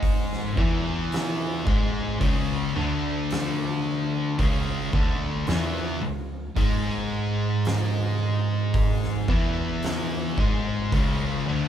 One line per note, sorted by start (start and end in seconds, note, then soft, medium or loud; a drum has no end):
0.00 0.55 G#2 loud
0.00 0.55 G#3 loud
0.00 kick medium
0.00 open hi-hat medium
0.33 snare soft
0.57 1.64 E2 medium
0.57 1.62 E2 medium
0.57 1.64 E3 loud
0.57 kick loud
1.12 snare loud
1.12 open hi-hat medium
1.65 2.18 G#2 loud
1.65 2.17 G#2 medium
1.65 2.19 G#3 medium
1.65 kick loud
2.20 2.75 C#2 loud
2.20 2.71 C#2 medium
2.20 2.75 C#3 loud
2.20 kick medium
2.20 open hi-hat medium
2.75 4.37 D2 medium
2.75 4.35 D2 loud
2.75 4.36 D3 loud
3.30 snare loud
3.30 open hi-hat medium
4.39 4.89 C#2 loud
4.39 4.92 C#2 medium
4.39 4.91 C#3 loud
4.39 kick loud
4.39 open hi-hat medium
4.93 5.43 D2 medium
4.93 5.46 D2 medium
4.93 5.46 D3 loud
4.93 kick loud
5.47 5.98 E2 loud
5.47 6.00 E2 medium
5.47 6.01 E3 medium
5.47 snare loud
5.47 open hi-hat medium
6.03 6.45 C#2 medium
6.03 6.53 C#2 medium
6.56 9.27 G#2 loud
6.56 9.25 G#2 loud
6.56 9.27 G#3 loud
6.56 kick medium
6.56 open hi-hat medium
7.65 snare loud
7.65 open hi-hat medium
8.74 kick loud
8.74 open hi-hat medium
9.04 snare soft
9.28 10.33 E2 medium
9.28 10.36 E2 medium
9.28 10.36 E3 loud
9.28 kick loud
9.83 snare loud
9.83 open hi-hat medium
10.38 10.89 G#2 medium
10.38 10.91 G#2 medium
10.38 10.91 G#3 loud
10.38 kick loud
10.92 11.43 C#2 medium
10.92 11.48 C#2 loud
10.92 11.48 C#3 loud
10.92 kick loud
10.92 open hi-hat medium
11.46 11.68 D2 medium
11.46 11.68 D3 loud